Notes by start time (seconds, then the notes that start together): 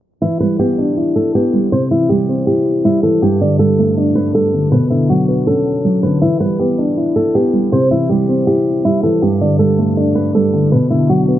0.22 E3 E4
0.40 G3 B4
0.59 B3 G4
0.78 D4
0.97 E4
1.16 A4
1.35 B3 G4
1.53 G3
1.72 C3 C5
1.91 E3 E4
2.09 G3 G4
2.29 C4
2.47 E4 G4
2.84 G3 E4
3.03 E3 A4
3.22 G2 G4
3.41 D3 D5
3.59 G3 A4
3.79 A3
3.97 D4
4.15 B4
4.35 G3 A4
4.53 D3
4.72 B2 B4
4.90 D3 E4
5.09 F#3 F#4
5.28 B3
5.47 C#4 A4
5.85 F#3
6.03 D3 B4
6.22 E3 E4
6.40 G3 B4
6.59 B3 G4
6.78 D4
6.97 E4
7.16 A4
7.35 B3 G4
7.53 G3
7.72 C3 C5
7.91 E3 E4
8.09 G3 G4
8.29 C4
8.47 E4 G4
8.84 G3 E4
9.03 E3 A4
9.22 G2 G4
9.41 D3 D5
9.59 G3 A4
9.79 A3
9.97 D4
10.15 B4
10.35 G3 A4
10.53 D3
10.72 B2 B4
10.90 D3 E4
11.09 F#3 F#4
11.28 B3